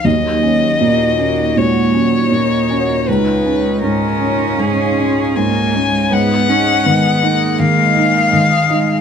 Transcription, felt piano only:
\new Staff \with { instrumentName = "Felt piano" } { \clef bass \time 4/4 \key ees \minor \tempo 4 = 80 ees,8 des'8 bes,8 des'8 bes,8 des'8 bes,8 des'8 | des,8 des'8 aes,8 des'8 aes,8 des'8 aes,8 des'8 | aes,8 ees'8 ees8 ees'8 ees8 ees'8 ees8 ees'8 | }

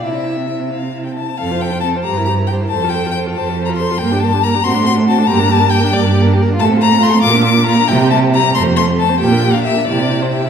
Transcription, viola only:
\new Staff \with { instrumentName = "Viola" } { \time 6/8 \key f \major \tempo 4. = 92 e'16 c'16 e'16 c'16 e'16 c'16 e'16 c'16 e'16 c'16 e'16 c'16 | c'16 f'16 c'16 f'16 c'16 f'16 g'16 e'16 g'16 e'16 g'16 e'16 | a'16 f'16 a'16 f'16 a'16 f'16 a'16 f'16 a'16 f'16 a'16 f'16 | bes16 d'16 bes16 d'16 bes16 d'16 c'16 d'16 c'16 d'16 c'16 d'16 |
bes16 d'16 bes16 d'16 bes16 d'16 bes16 d'16 bes16 d'16 bes16 d'16 | a16 c'16 a16 c'16 a16 c'16 bes16 d'16 bes16 d'16 bes16 d'16 | g16 c'16 g16 c'16 g16 c'16 a16 c'16 a16 c'16 a16 c'16 | bes16 d'16 bes16 d'16 bes16 d'16 e'16 c'16 e'16 c'16 e'16 c'16 | }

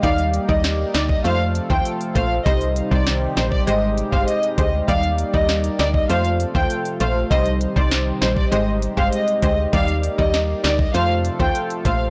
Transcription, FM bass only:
\new Staff \with { instrumentName = "FM bass" } { \clef bass \time 4/4 \key ees \major \tempo 4 = 99 ees,8. ees,8. d,8 f,8. ees,16 r8 bes,,8 | c,8. c,8. bes,,8 aes,,8. g,,16 r8 d,8 | ees,8. ees,8. d,8 f,8. ees,16 r8 bes,,8 | c,8. c,8. bes,,8 aes,,8. g,,16 r8 d,8 |
ees,8. ees,8. d,8 f,8. ees,16 r8 bes,,8 | }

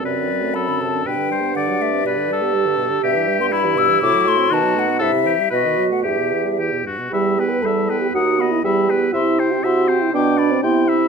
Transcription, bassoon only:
\new Staff \with { instrumentName = "Bassoon" } { \clef bass \time 2/4 \key g \major \tempo 4 = 120 fis,2 | g,2~ | g,2 | \key e \minor g,2 |
a,4 b,4 | c8 r8 b,4 | e,4. r8 | e,4 e,4 |
dis,4 e,4 | c4 c4 | b,4 c4 | }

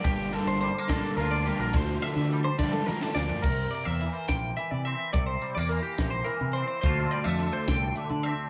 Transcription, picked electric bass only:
\new Staff \with { instrumentName = "Picked electric bass" } { \clef bass \time 6/8 \key c \mixolydian \tempo 4. = 71 g,,8. g,,8 r16 bes,,16 r16 d,8. bes,,16 | d,8 r16 d8. d8 r8 d,16 r16 | c,8 r16 e,8 r16 bes,,8 r16 c8 r16 | c,8 r16 e,8 r16 bes,,8 r16 c8 r16 |
d,8 r16 f,8 r16 c,8 r16 d8 r16 | }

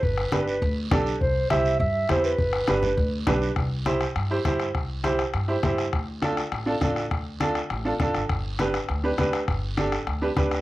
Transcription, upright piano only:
\new Staff \with { instrumentName = "Upright piano" } { \time 4/4 \key c \major \tempo 4 = 203 r4 <d' g' b'>8 r4. <d' g' a'>8 r8 | r4 <e' g' c''>8 r4. <e' g' c''>8 r8 | r4 <d' g' b'>8 r4. <d' g' b'>8 r8 | r4 <e' g' c''>8 r4 <e' g' c''>8 <e' g' c''>8 r8 |
r4 <e' g' c''>8 r4 <e' g' c''>8 <e' g' c''>8 r8 | r4 <d' f' a'>8 r4 <d' f' a'>8 <d' f' a'>8 r8 | r4 <d' f' a'>8 r4 <d' f' a'>8 <d' f' a'>8 r8 | r4 <d' g' b'>8 r4 <d' g' b'>8 <d' g' b'>8 r8 |
r4 <d' g' a'>8 r4 <d' g' b'>8 <d' g' b'>8 r8 | }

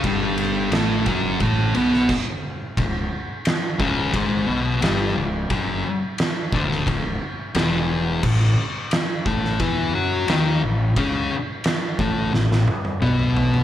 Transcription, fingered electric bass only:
\new Staff \with { instrumentName = "Fingered electric bass" } { \clef bass \time 4/4 \key cis \minor \tempo 4 = 88 g,,4 a,,8 fis,,8 a,,8 b,,8 r4 | cis,,8 r4 cis,,8 gis,,8 b,,8 g,,8 cis,,8 | fis,,8 r4 d,,8 cis,,8 r8 e,,4 | a,,8 r4 a,,8 e,8 fis,8 dis,8 a,,8 |
cis,8 r4 a,,8 a,,8 r8 b,,4 | }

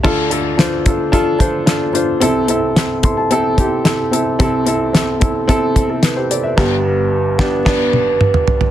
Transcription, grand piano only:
<<
  \new Staff \with { instrumentName = "Grand piano" } { \time 4/4 \key d \dorian \tempo 4 = 110 << { r1 | r4. c'''16 a''16 g''4 e''4 | r2 r8. <e' a'>16 <e' b'>16 <g' c''>16 <a' d''>16 <b' e''>16 | r1 | } \\ { <d' f' a'>8 <d' f' a'>8 <d' f' c''>8 <d' f' a'>8 <d' f' a'>8 <d' f' c''>8 <d' f' a'>8 <d' f' c''>8 | <c' e' a'>8 <c' e' a'>8 <c' e' a'>8 <c' e' a'>8 <c' e' a'>8 <c' e' g'>8 <c' e' a'>8 <c' e' a'>8 | <c' e' a'>8 <c' e' a'>8 <c' e' a'>8 <c' e' a'>8 <c' e' a'>8 r4. | <g,, g, b d' g'>8 r4 <b d' g'>8 <b d'>8 r4. | } >> }
  \new Staff \with { instrumentName = "Grand piano" } { \clef bass \time 4/4 \key d \dorian <d, d>1 | <c, c>1 | <c, c>1 | r1 | }
>>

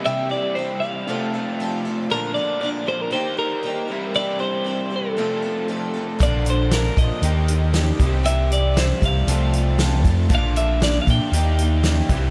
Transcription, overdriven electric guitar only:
\new Staff \with { instrumentName = "Overdriven electric guitar" } { \time 4/4 \key c \mixolydian \tempo 4 = 117 <c e g c' e'>2 <c f a c' f'>2 | <bes, d bes d' f'>2 <ees bes ees' g'>4. <c e g c' e'>8~ | <c e g c' e'>2 <c f a c' f'>2 | <bes, d bes d' f'>2 <ees bes ees' g'>4. <c e g c' g'>8~ |
<c e g c' g'>2 <c f a c' f'>2 | <bes, d bes d' f'>2 <ees bes ees' g'>4. <c e g c' e'>8 | }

